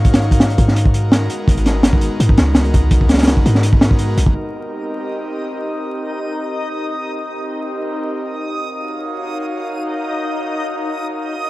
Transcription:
<<
  \new Staff \with { instrumentName = "Synth texture" } { \time 4/4 \key ees \lydian \tempo 4 = 167 r1 | r1 | r1 | <ees' ees'''>1~ |
<ees' ees'''>1~ | <ees' ees'''>1~ | <ees' ees'''>1~ | <ees' ees'''>1 | }
  \new Staff \with { instrumentName = "Analog synth pad" } { \time 4/4 \key ees \lydian <ees' ges' bes' des'' f''>2 r8 <aes ces' ees' ges' bes'>4. | <aes ces' ees' ges' bes'>2~ <aes ces' ees' ges' bes'>8 <aes ces' ees' ges' bes'>4. | <aes ces' ees' ges' bes'>2~ <aes ces' ees' ges' bes'>8 <aes ces' ees' ges' bes'>4. | <c' ees' g' bes' ees''>1~ |
<c' ees' g' bes' ees''>1 | <c' ees' g' bes' ees''>1 | <ees' ges' bes' des'' f''>1~ | <ees' ges' bes' des'' f''>1 | }
  \new Staff \with { instrumentName = "808-style bass" } { \clef bass \time 4/4 \key ees \lydian aes,4. aes,2 r8 | aes,,4.~ aes,,16 r16 aes,8 des,4 des,8~ | des,4. aes,2 bes,,16 aes,,16 | r1 |
r1 | r1 | r1 | r1 | }
  \new DrumStaff \with { instrumentName = "Drums" } \drummode { \time 4/4 <hh bd>16 <hh sn>16 hh16 <hh bd>16 <hh sn>16 hh16 <hh bd>16 sn16 hh16 bd16 hh8 <hh sn>8 hh8 | <hh bd>16 hh16 <hh sn>8 <hh sn>16 bd16 hh8 hh16 bd16 <hh sn>8 <hh sn>16 hh16 <hh bd>8 | <hh bd>16 bd16 <hh sn>32 <hh sn>32 <hh sn>32 <hh sn>32 <hh sn>16 bd16 hh16 sn16 hh16 bd16 <hh sn>16 bd16 hh8 hh16 bd16 | r4 r4 r4 r4 |
r4 r4 r4 r4 | r4 r4 r4 r4 | r4 r4 r4 r4 | r4 r4 r4 r4 | }
>>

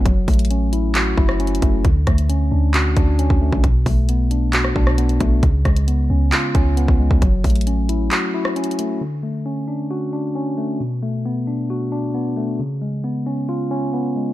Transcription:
<<
  \new Staff \with { instrumentName = "Tine electric piano" } { \time 4/4 \key fis \minor \tempo 4 = 134 fis8 a8 cis'8 e'8 fis'8 e'8 cis'8 a8 | d8 a8 cis'8 d'8 fis'8 d'8 cis'8 a8 | b,8 a8 b8 d'8 fis'8 d'8 b8 a8 | cis8 gis8 b8 cis'8 eis'8 cis'8 b8 gis8 |
fis8 a8 cis'8 e'8 fis'8 e'8 cis'8 a8 | d8 a8 cis'8 d'8 fis'8 d'8 cis'8 a8 | b,8 a8 b8 d'8 fis'8 d'8 b8 a8 | cis8 gis8 b8 cis'8 eis'8 cis'8 b8 gis8 | }
  \new Staff \with { instrumentName = "808-style bass" } { \clef bass \time 4/4 \key fis \minor fis,,8 a,,2 fis,,4 fis,,8 | d,8 d,4 d,4 d,8. d,8 b,,16~ | b,,8 b,,2 b,,4 b,,8 | cis,8 cis,4 cis,8 r8 cis,8. cis,8 cis,16 |
fis,,8 a,,4. r2 | r1 | r1 | r1 | }
  \new DrumStaff \with { instrumentName = "Drums" } \drummode { \time 4/4 <hh bd>8 <hh hho bd>32 hh32 hh32 hh32 hh8 hh8 <hc hh>8 bd16 ss16 \tuplet 3/2 { hh16 hh16 hh16 <hh bd>16 r16 r16 } | <hh bd>8 <hh bd ss>16 hh16 hh4 <hc hh>8 <hh bd>8 hh16 bd8 bd16 | <hh bd>8 <hho bd>8 hh8 hh8 <hc hh>16 ss16 bd16 ss16 hh16 hh16 <hh bd>8 | <hh bd>8 <hh bd ss>16 hh16 hh4 <hc hh>8 <hh bd>8 hh16 bd8 bd16 |
<hh bd>8 <hh hho bd>32 hh32 hh32 hh32 hh8 hh8 <hc hh>8. ss16 \tuplet 3/2 { hh16 hh16 hh16 hh16 r16 r16 } | r4 r4 r4 r4 | r4 r4 r4 r4 | r4 r4 r4 r4 | }
>>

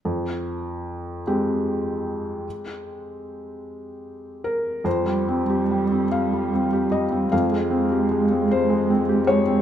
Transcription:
<<
  \new Staff \with { instrumentName = "Felt piano" } { \time 6/8 \key f \minor \tempo 4. = 50 << { r2. | r2 r8 bes'8 | c''4. f''4 ees''8 | f''4. c''4 des''8 | } \\ { f,4. <aes c' g'>4.~ | <aes c' g'>2. | f,16 g16 c'16 g'16 g16 c'8 g16 c'16 g'16 g16 c'16 | f,16 aes16 c'16 g'16 aes16 c'8 aes16 c'16 g'16 aes16 c'16 | } >> }
  \new Staff \with { instrumentName = "Cello" } { \clef bass \time 6/8 \key f \minor r2. | r2. | g2. | aes2. | }
>>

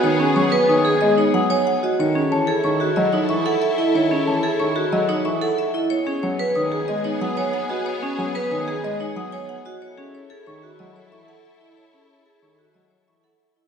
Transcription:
<<
  \new Staff \with { instrumentName = "Celesta" } { \time 6/4 \key fis \dorian \tempo 4 = 184 r4 cis'''8 r8 dis'''8 r8 dis''8 r8 dis'''8 r4. | r4 a''8 r8 cis'''8 r8 dis''8 r8 cis'''8 r4. | r4 a''8 r8 cis'''8 r8 dis''8 r8 cis'''8 r4. | r2 dis'''8 r8 dis''8 r8 dis'''8 r4. |
r2 dis'''8 r8 dis''8 r8 dis'''8 r4. | r2 cis'''8 r4. cis'''8 r4. | r2 cis'''8 r4. cis'''8 r4. | }
  \new Staff \with { instrumentName = "Marimba" } { \time 6/4 \key fis \dorian cis''8 gis'8 cis''8 b'8 cis''8 gis'8 dis''8 cis''8 fis''8 gis''8 fis''8 dis''8 | cis''8 gis'8 cis''8 a'8 cis''8 gis'8 dis''8 cis''8 e''8 fis''8 e''8 dis''8 | cis''8 gis'8 cis''8 a'8 cis''8 gis'8 dis''8 cis''8 e''8 fis''8 e''8 dis''8 | cis''8 gis'8 cis''8 b'8 cis''8 gis'8 dis''8 cis''8 fis''8 gis''8 fis''8 dis''8 |
cis''8 gis'8 cis''8 b'8 cis''8 gis'8 dis''8 cis''8 fis''8 gis''8 fis''8 dis''8 | cis''8 gis'8 cis''8 a'8 cis''8 gis'8 dis''8 cis''8 e''8 fis''8 e''8 dis''8 | cis''8 gis'8 cis''8 a'8 cis''8 gis'8 dis''8 cis''8 e''8 fis''8 e''8 dis''8 | }
  \new Staff \with { instrumentName = "String section" } { \time 6/4 \key fis \dorian <b gis'>1~ <b gis'>4. r8 | <e' a'>1.~ | <e' a'>1~ <e' a'>4. r8 | <b gis'>1.~ |
<b gis'>1~ <b gis'>4. r8 | <e' a'>1.~ | <e' a'>1~ <e' a'>4. r8 | }
  \new Staff \with { instrumentName = "Vibraphone" } { \time 6/4 \key fis \dorian r8 cis'8 r8 b'8 r8 gis'8 r8 dis'8 r8 cis''8 r8 fis'8 | r8 cis'8 r8 gis'8 r8 fis'8 r8 dis'8 r8 a'8 r8 e'8 | r8 cis'8 r8 gis'8 r8 fis'8 r8 dis'8 r8 a'8 r8 e'8 | r8 cis'8 r8 b'8 r8 gis'8 r8 dis'8 r8 cis''8 r8 fis'8 |
r8 cis'8 r8 b'8 r8 gis'8 r8 dis'8 r8 cis''8 r8 fis'8 | r8 cis'8 r8 gis'8 r8 fis'8 r4. a'8 r8 e'8 | r8 cis'8 r8 gis'8 r8 fis'8 r4. a'8 r8 e'8 | }
  \new Staff \with { instrumentName = "Grand piano" } { \clef bass \time 6/4 \key fis \dorian dis8 r8 fis8 r8 dis8 r8 gis8 r8 fis8 r4. | dis8 r8 e8 r8 dis8 r8 fis8 r8 e8 r4. | dis8 r8 e8 r8 dis8 r8 fis8 r8 e8 r4. | r4 fis8 r8 dis8 r8 gis8 r8 fis8 r4. |
r4 fis8 r8 dis8 r8 gis8 r8 fis8 r4. | r2 dis8 r8 fis8 r8 e8 r4. | r2 dis8 r8 fis8 r8 e8 r4. | }
>>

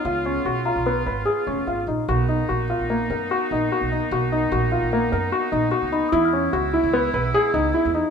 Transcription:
<<
  \new Staff \with { instrumentName = "Celesta" } { \time 5/4 \key b \lydian \tempo 4 = 148 r4. ais''4 r2 r8 | r1 r4 | r1 r8 b''16 dis'''16 | eis'''4 r1 | }
  \new Staff \with { instrumentName = "Grand piano" } { \time 5/4 \key b \lydian eis'8 cis'8 fis'8 eis'8 b8 b'8 gis'8 cis'8 eis'8 dis'8 | fis'8 dis'8 fis'8 eis'8 ais8 ais'8 fis'8 dis'8 fis'8 dis'8 | fis'8 dis'8 fis'8 eis'8 ais8 ais'8 fis'8 dis'8 fis'8 dis'8 | e'8 cis'8 fis'8 e'8 b8 b'8 gis'8 dis'8 e'8 dis'8 | }
  \new Staff \with { instrumentName = "Woodwind section" } { \time 5/4 \key b \lydian << { <b eis'>1~ <b eis'>4 | <ais dis'>1~ <ais dis'>4~ | <ais dis'>1~ <ais dis'>4 | <gis e'>1~ <gis e'>4 | } \\ { cis1~ cis4 | b1~ b4~ | b1~ b4~ | b1~ b4 | } >> }
  \new Staff \with { instrumentName = "Upright bass" } { \clef bass \time 5/4 \key b \lydian cis,4 b,,8. b,,8. gis,,8 r8 eis,,8 gis,,8 ais,,8 | b,,4 ais,,8. ais,,8. fis,8 r8 ais,,8 r16 b,,8 r16 | b,,4 ais,,8. ais,,8. fis,8 r8 ais,,8 r16 cis,8 r16 | e,4 cis,8. cis,8. b,,8 r8 cis,8 r16 e,8 r16 | }
>>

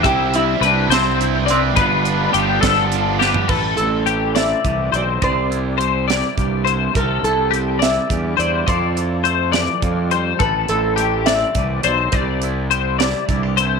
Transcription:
<<
  \new Staff \with { instrumentName = "Clean electric guitar" } { \time 6/8 \key c \major \tempo 4. = 69 e''4 b'8 c''4 d''8 | b'4 g'8 a'4 g'8 | a'4 g'8 d''4 c''8 | d''4 c''8 d''4 c''8 |
a'4 g'8 d''4 c''8 | d''4 c''8 d''4 c''8 | a'4 g'8 d''4 c''8 | d''4 c''8 d''4 c''8 | }
  \new Staff \with { instrumentName = "Resonator guitar played with a steel bar" } { \time 6/8 \key c \major g'8 e'8 d'8 c'4 c'8 | b2~ b8 r8 | b'8 a'4 e''4 d''8 | c''4 r2 |
bes'8 a'4 e''4 d''8 | c''4 r2 | b'8 a'4 e''4 d''8 | c''4 r2 | }
  \new Staff \with { instrumentName = "Clean electric guitar" } { \time 6/8 \key c \major << { e'8 g8 g'8 e'8 e'16 g'16 b'8 | <d' f' b'>8 d'8 f'8 d'8 f'8 b'8 | g'8 c'8 g'8 c'8 g'8 c'8 | g'8 e'8 g'8 e'8 g'8 e'8 |
g'8 e'8 g'8 e'8 g'8 e'8 | a'8 e'8 a'2 | g'8 c'8 g'8 c'8 g'8 c'8 | g'8 e'8 g'8 e'8 e'16 g'16 e'8 | } \\ { c4 g4 g,4 | g,4 g4 d4 | a,4 a4 e4 | c4 g4 g,4 |
c4 g4 g,4 | f4 a8 e8 f8 g8 | a,4 a4 e4 | c4 g4 g,4 | } >> }
  \new Staff \with { instrumentName = "Overdriven electric guitar" } { \time 6/8 \key c \major <c g c' e'>8 <g c' e'>8 <c g c' e'>8 <c g c' e'>4 <g c' e'>8 | <g, d f b d'>8 <f b d'>8 <d f b d'>8 <g, d f b d'>4 <f b d'>8 | r2. | r2. |
r2. | r2. | r2. | r2. | }
  \new Staff \with { instrumentName = "Fingered electric bass" } { \clef bass \time 6/8 \key c \major c,4 c,8 c,4. | g,,4 g,,8 g,,4. | a,,8 a,,4. c,8 b,,8 | c,2 c,4 |
c,8 c,4. e,8 e,8 | f,2 f,4 | a,,8 a,,4. c,8 b,,8 | c,2 c,4 | }
  \new DrumStaff \with { instrumentName = "Drums" } \drummode { \time 6/8 <hh bd>8 hh8 hh8 <hh sn>8 hh8 hh8 | <hh bd>8 hh8 hh8 <hh bd sn>8 hh8 sn16 tomfh16 | <cymc bd>8 hh8 hh8 <hh sn>8 <hh bd>8 hh8 | <hh bd>8 hh8 hh8 <hh sn>8 <hh bd>8 hh8 |
<hh bd>8 hh8 hh8 <hh sn>8 <hh bd>8 hh8 | <hh bd>8 hh8 hh8 <hh sn>8 <hh bd>8 hh8 | <hh bd>8 hh8 hh8 <hh sn>8 <hh bd>8 hh8 | <hh bd>8 hh8 hh8 <hh sn>8 <hh bd>8 hh8 | }
>>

